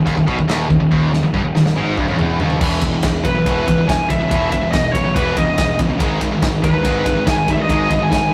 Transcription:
0.06 picked electric bass D#1, distorted electric guitar D#2, kick, china
0.17 picked electric bass D#1, distorted electric guitar D#2, kick
0.27 picked electric bass B1, distorted electric guitar B2, kick
0.38 picked electric bass D#1, distorted electric guitar D#2, kick
0.48 picked electric bass D#1, distorted electric guitar D#2, snare, china
0.69 picked electric bass D#1, distorted electric guitar D#2, kick
0.80 picked electric bass D#1, distorted electric guitar D#2
0.91 picked electric bass D#1, distorted electric guitar D#2, kick
1.12 picked electric bass D#1, distorted electric guitar D#2, snare
1.23 picked electric bass D#1, distorted electric guitar D#2, high tom
1.34 picked electric bass G1, distorted electric guitar G2, kick
1.44 picked electric bass D#1, distorted electric guitar D#2
1.55 picked electric bass D#1, distorted electric guitar D#2, snare
1.65 picked electric bass D#1, distorted electric guitar D#2, snare
1.76 picked electric bass G#1, distorted electric guitar G#2, mid tom
1.97 picked electric bass G1, distorted electric guitar G2, kick
2.08 picked electric bass D#1, distorted electric guitar D#2, mid tom
2.18 picked electric bass E1, distorted electric guitar E2, floor tom
2.39 picked electric bass D#1, distorted electric guitar D#2, floor tom
2.50 floor tom
2.60 picked electric bass E1, distorted electric guitar E2 B2 E3, kick, crash
2.81 picked electric bass E1, distorted electric guitar E2 B2, kick, ride
2.93 distorted electric guitar E2 B2
3.03 picked electric bass E1, distorted electric guitar E2 B2, kick, snare, ride
3.25 picked electric bass B1, distorted electric guitar E2 B2, lead electric guitar B4, kick, ride
3.35 distorted electric guitar E2 B2
3.46 picked electric bass E1, distorted electric guitar E2 B2 E3, kick, ride
3.66 picked electric bass E1, distorted electric guitar E2 B2 E3, kick, ride
3.78 distorted electric guitar E2 B2
3.87 picked electric bass E1, distorted electric guitar E2 B2 E3, lead electric guitar G#5, kick, snare, ride
4.09 picked electric bass C#2, distorted electric guitar E2 B2, lead electric guitar E5, kick, ride
4.19 distorted electric guitar E2 B2
4.29 picked electric bass E1, distorted electric guitar E2 B2 E3, kick, ride
4.50 picked electric bass E1, distorted electric guitar E2 B2, lead electric guitar E5, kick, ride
4.62 distorted electric guitar E2 B2
4.72 picked electric bass E1, distorted electric guitar E2 B2, lead electric guitar D#5, kick, snare, ride
4.93 picked electric bass B1, distorted electric guitar E2 B2, lead electric guitar C#5, kick, ride
5.04 distorted electric guitar E2 B2
5.15 picked electric bass E1, distorted electric guitar E2 B2 E3, lead electric guitar B4, kick, ride
5.36 picked electric bass E1, distorted electric guitar E2 B2 E3, lead electric guitar D#5, kick, ride
5.46 distorted electric guitar E2 B2
5.57 picked electric bass E1, distorted electric guitar E2 B2 E3, kick, snare, ride
5.78 picked electric bass C#2, distorted electric guitar E2 B2, kick, ride
5.90 distorted electric guitar E2 B2
5.99 picked electric bass G#1, distorted electric guitar G#2 D#3 G#3, kick, ride
6.20 picked electric bass G#1, distorted electric guitar G#2 D#3, kick, ride
6.32 distorted electric guitar G#2 D#3
6.42 picked electric bass G#1, distorted electric guitar G#2 D#3, kick, snare, ride
6.62 picked electric bass D#2, distorted electric guitar G#2 D#3, lead electric guitar B4, kick, ride
6.73 distorted electric guitar G#2 D#3
6.82 picked electric bass G#1, distorted electric guitar G#2 D#3 G#3, kick, ride
7.04 picked electric bass G#1, distorted electric guitar G#2 D#3 G#3, kick, ride
7.15 distorted electric guitar G#2 D#3
7.26 picked electric bass G#1, distorted electric guitar G#2 D#3 G#3, lead electric guitar G#5, kick, snare, ride
7.48 picked electric bass G2, distorted electric guitar G#2 D#3, lead electric guitar E5, kick, ride
7.57 distorted electric guitar G#2 D#3
7.62 lead electric guitar D#5
7.69 picked electric bass G#1, distorted electric guitar G#2 D#3 G#3, kick, ride
7.90 picked electric bass G#1, distorted electric guitar G#2 D#3, kick, ride
7.99 distorted electric guitar G#2 D#3, lead electric guitar G#5
8.10 picked electric bass G#1, distorted electric guitar G#2 D#3, kick, snare, ride

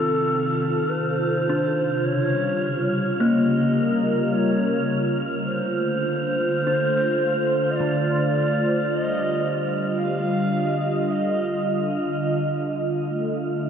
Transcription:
Already playing: analog synth pad C3 D#3 F4 A4, kalimba C4 G5, shakuhachi A4, synth texture F6
0.89 shakuhachi C5
1.49 kalimba D4
2.02 analog synth pad C#3, shakuhachi C#5
2.24 analog synth pad G3
3.18 kalimba A#3, shakuhachi D#5
3.57 analog synth pad A#4
4.33 shakuhachi C#5
5.41 analog synth pad D3, shakuhachi C5
5.59 analog synth pad A3
6.47 analog synth pad C5
6.67 kalimba D4
7.71 shakuhachi D#5
7.76 shakuhachi D5
7.80 kalimba D3
8.85 analog synth pad D3, shakuhachi D5
8.97 analog synth pad G3, shakuhachi D#5
9.98 shakuhachi F5
10.37 analog synth pad D#5
11.12 shakuhachi D#5
12.28 synth texture F6
13.06 analog synth pad A3

